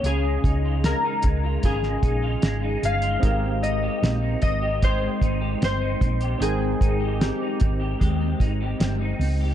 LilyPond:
<<
  \new Staff \with { instrumentName = "Harp" } { \time 4/4 \key aes \major \tempo 4 = 75 aes'4 bes'4 aes'4. f''8~ | f''8 ees''4 ees''8 c''4 c''4 | aes'4 g'2~ g'8 r8 | }
  \new Staff \with { instrumentName = "Synth keys" } { \time 4/4 \key aes \major r1 | <c' ees' g' bes'>1 | <c' ees' bes' g''>1 | }
  \new Staff \with { instrumentName = "Clean electric guitar" } { \time 4/4 \key aes \major <des f'>16 aes16 ees'16 f'16 aes16 ees'16 aes16 f'16 <des f'>16 aes16 ees'16 f'16 aes16 ees'16 aes16 f'16 | <aes g'>16 c'16 ees'16 g'16 c'16 ees'16 c'16 g'16 <aes g'>16 c'16 ees'16 g'16 c'16 ees'16 c'16 g'16 | aes16 c'16 ees'16 g'16 c'16 ees'16 c'16 g'16 <aes g'>16 c'16 ees'16 g'16 c'16 ees'16 c'16 g'16 | }
  \new Staff \with { instrumentName = "Fingered electric bass" } { \clef bass \time 4/4 \key aes \major des,8 des,8. r16 des,8 aes,,8 bes,,8 aes,,8 g,,8 | aes,,4 bes,,8 aes,,4 aes,,8 g,,8 bes,,8 | aes,,8 aes,,8. r16 aes,,8 ees,8 aes,,8 g,,8 des,8 | }
  \new DrumStaff \with { instrumentName = "Drums" } \drummode { \time 4/4 hh8 <hh bd>8 <hh sn>8 <hh bd>8 <hh bd>16 sn16 <hh bd>8 <hh sn>8 hh16 hh16 | <hh bd>8 hh8 <hh sn>8 <hh bd>8 <hh bd>8 <hh bd>8 <hh sn>8 <hh bd>16 hh16 | hh8 <hh bd>8 <hh sn>8 <hh bd>8 <hh bd>8 <hh bd>8 <hh sn>8 hho8 | }
>>